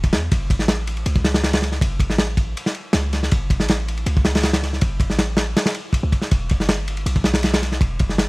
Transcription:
Already playing: D1
0.03 kick, ride
0.12 E2, snare, ride
0.31 F#1, kick, ride
0.50 kick, ride
0.59 A1, snare
0.68 snare, ride
0.87 ride
0.97 ride
1.06 C#2, ride
1.16 kick
1.25 snare, ride
1.34 snare, ride
1.44 snare, ride
1.53 snare, ride
1.62 snare, ride
1.72 snare
1.81 F#1, kick, ride
2.00 kick, ride
2.10 A1, snare
2.18 snare, ride
2.37 kick, ride
2.57 ride
2.66 snare
2.75 ride
2.93 C#2, snare, ride
3.13 snare, ride
3.23 snare
3.31 F#1, kick, ride
3.50 kick, ride
3.60 A1, snare
3.68 snare, ride
3.88 ride
3.97 ride
4.06 C#2, ride
4.17 kick
4.25 snare, ride
4.35 snare, ride
4.43 snare, ride
4.53 snare, ride
4.63 snare, ride
4.73 snare
4.81 F#1, kick, ride
5.00 kick, ride
5.10 A1, snare
5.19 snare, ride
5.37 snare, ride
5.56 snare, ride
5.66 snare, ride
5.75 ride
5.93 kick, ride
6.03 C#2
6.12 kick, ride
6.22 snare
6.31 E1, kick, ride
6.49 kick, ride
6.59 G1, snare
6.69 snare, ride
6.88 ride
6.97 ride
7.06 B1, ride
7.16 kick
7.24 snare, ride
7.34 snare, ride
7.43 snare, ride
7.54 snare, ride
7.62 snare, ride
7.72 snare
7.81 E1, kick, ride
7.99 kick, ride
8.09 G1, snare
8.18 snare, ride

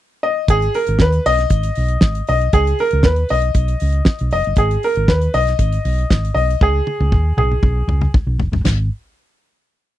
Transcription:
0.23 D#5
0.48 G#1 G#4, kick, closed hi-hat
0.62 closed hi-hat
0.74 A#4, open hi-hat
0.87 G#1, closed hi-hat
0.99 D#2 B4, kick, snare
1.12 closed hi-hat
1.26 B1 D#5, open hi-hat
1.39 snare, closed hi-hat
1.50 G#1, kick, closed hi-hat
1.63 closed hi-hat
1.75 B1, open hi-hat
1.88 closed hi-hat
2.01 G#1, kick, snare
2.15 closed hi-hat
2.27 B1 D#5, open hi-hat
2.41 closed hi-hat
2.53 C#2 G#4, kick, closed hi-hat
2.67 closed hi-hat
2.79 A#4, open hi-hat
2.91 C#2, closed hi-hat
3.03 D#2 B4, kick, snare
3.16 closed hi-hat
3.29 B1 D#5, open hi-hat
3.42 closed hi-hat
3.54 B1, kick, closed hi-hat
3.68 closed hi-hat
3.80 C#2, open hi-hat
3.92 closed hi-hat
4.05 kick, snare
4.19 B1, closed hi-hat
4.31 F1 D#5, open hi-hat
4.44 F#1, closed hi-hat
4.56 G#1 G#4, kick, closed hi-hat
4.71 closed hi-hat
4.83 A#4, open hi-hat
4.96 G#1, closed hi-hat
5.08 D#2 B4, kick, snare
5.21 closed hi-hat
5.34 B1 D#5, open hi-hat
5.47 snare, closed hi-hat
5.59 G#1, kick, closed hi-hat
5.72 closed hi-hat
5.85 B1, open hi-hat
5.98 closed hi-hat
6.10 G#1, kick, snare
6.25 closed hi-hat
6.34 B1 D#5, open hi-hat
6.50 closed hi-hat
6.61 C#2 G#4, kick, high tom
6.87 high tom
7.00 C#2, high tom
7.12 D#2, kick, mid tom
7.37 B1 G#4, mid tom
7.52 mid tom
7.63 B1, kick, mid tom
7.88 C#2, mid tom
8.01 mid tom
8.14 kick, floor tom
8.27 B1
8.38 F1, floor tom
8.52 F#1, floor tom
8.64 G#1, snare, floor tom, crash

